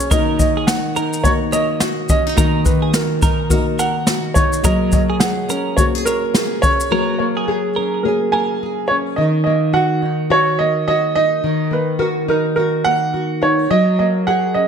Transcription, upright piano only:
Already playing: C#5
0.11 D#5
0.39 D#5
0.67 F#5
1.24 C#5
1.53 D#5
2.10 D#5
2.65 B4
2.95 A#4
3.51 A#4
3.79 F#5
4.34 C#5
4.64 D#5
4.93 D#5
5.20 F#5
5.77 C#5
6.05 A#4
6.62 C#5
7.19 C#5
7.48 G#4
8.03 A#4
8.32 G#5
8.88 C#5
9.16 D#5
9.44 D#5
9.74 F#5
10.31 C#5
10.59 D#5
10.88 D#5
11.15 D#5
11.73 B4
12.00 A#4
12.30 A#4
12.56 A#4
12.85 F#5
13.43 C#5
13.71 D#5
13.99 D#5
14.27 F#5
14.54 D#5

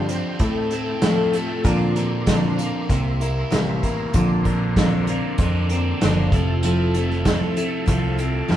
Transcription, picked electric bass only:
Already playing: G2
0.40 A2
1.03 A2
1.65 A#2
2.90 C2
3.53 A1
4.14 A#1
5.39 F2
6.03 F#1
6.32 F1
7.88 C2
8.51 G2

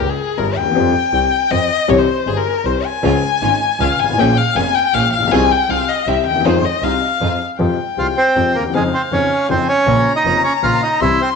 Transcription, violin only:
0.00 G4
0.09 G#4
0.38 A#4
0.57 G5
1.51 D#5
1.89 C#5
1.99 C5
2.28 G#4
2.37 A#4
2.66 C5
2.85 G#5
3.80 F5
4.00 G#5
4.19 G5
4.37 F5
4.56 G#5
4.75 G5
4.94 F5
5.13 F5
5.32 G#5
5.51 G5
5.70 F5
5.89 D#5
6.08 E5
6.27 G5
6.46 C5
6.65 D#5
6.83 F5
7.60 G5
8.74 F5
9.49 G#5
9.86 A#5
11.00 C6

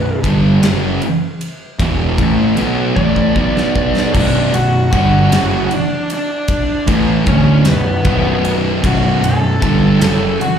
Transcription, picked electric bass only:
Already playing: B0
0.24 G1
0.61 F#1
1.79 E1
2.18 A1
2.56 B1
2.96 A1
3.35 B1
4.15 B0
4.53 B0
4.93 G1
5.31 F#1
6.87 A1
7.26 D1
7.66 B0
8.05 B0
8.83 B0
9.23 B0
9.62 G1
10.01 F#1

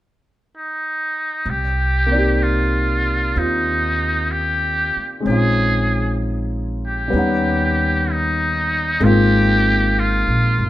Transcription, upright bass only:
1.46 C2
3.36 D#2
4.97 muted upright bass stroke
5.26 A#1
7.13 D#2
9.01 G#1
10.27 A#1
10.58 G1

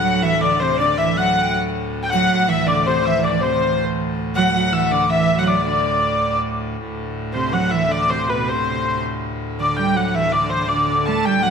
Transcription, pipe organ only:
Already playing: D2 A2
2.29 D2 A2
6.78 D2 A2
11.24 D2 A2

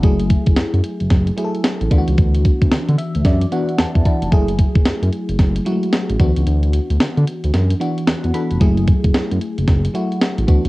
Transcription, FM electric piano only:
0.03 F#3 A3 E4 G#4
1.37 F#3 A3 E4 G#4
1.44 A4
1.91 E3 B3 D4 F4
1.98 F#4
2.98 E5
3.25 D5
3.51 E3 B3 D4 F#4 F#5
3.79 A5
4.05 E3 B3 D4 E4 A5
4.32 F#3 A3 E4 G#4
5.65 F#3 G#3 E4 F#4
5.72 A3
6.19 E3 B3 D4 F#4
7.80 E3 B3 D4 F#4
8.07 F#5
8.34 E3 B3 D4 A4 B5
8.60 F#3 A3 E4 G#4
9.94 F#3 A3 E4 F#4
10.47 E3 B3 D4 F#4

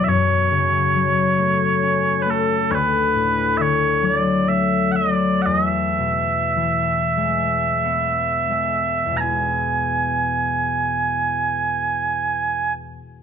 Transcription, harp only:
Already playing: E2 B2 E3 F#3 B3
0.07 F#2
0.51 C#3
0.95 F#3
1.38 A3
1.83 C#4
2.26 A3
2.71 D2
3.15 A2
3.60 D3
4.02 F#3
4.47 A3
4.94 F#3
5.46 E2
5.99 B2
6.56 E3
7.17 G#3
7.84 B3 F#5
8.50 G#3 E5
9.06 E2
9.12 B2
9.18 B3
9.23 E4
9.29 G#4
9.36 E5

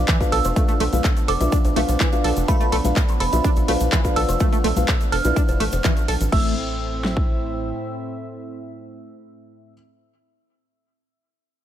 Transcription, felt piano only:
Already playing: D4 F4 B4 F5
0.20 D4 F4 B4 F5
0.56 D4 F4 B4 F5
0.93 D4 F4 B4 F5
1.41 D4 F4 B4 E5
1.76 D4 F4 B4 F5
2.13 D4 F4 B4 F5
2.48 D4 F4 B4 F5
2.85 D4 F4 B4 F5
3.33 D4 F4 B4 E5
3.68 D4 F4 B4 F5
4.05 D4 F4 B4 F5
4.41 D4 F4 B4 F5
4.77 D4 F4 B4 F5
5.25 D4 E4 F4 B4
5.84 D4 F4 B4 E5
6.32 C4 E4 A4 E5

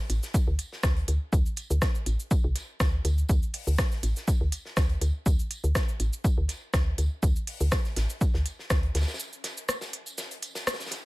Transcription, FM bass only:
0.10 A1
0.47 D2
0.83 D2
1.08 D2
1.33 D2
1.70 D2
2.06 A1
2.44 C2
2.80 D2
3.05 D2
3.29 D2
3.67 D2
4.03 A1
4.41 D2
4.77 D2
5.01 D2
5.26 D2
5.64 D2
6.00 A1
6.38 D2
6.74 D2
6.98 D2
7.23 D2
7.61 D2
7.97 A1
8.34 D2
8.70 D2
8.95 D2

